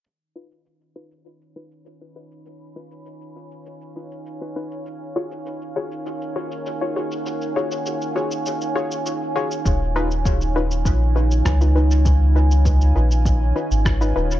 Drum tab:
SH |x--xxx-xxx-xx--x|x--xxx-xxx-xx--x|x--xxx-xxx-xx--x|xx-xxx-xxx-xx--x|
SD |----------------|----------------|----------------|----------------|
BD |----------------|----------------|----------------|----------------|

SH |x--xxx-xx--xxx-x|x--xxx-xx--xxx-x|
SD |------------r---|------------r---|
BD |o---o---o---o---|o---o---o---o---|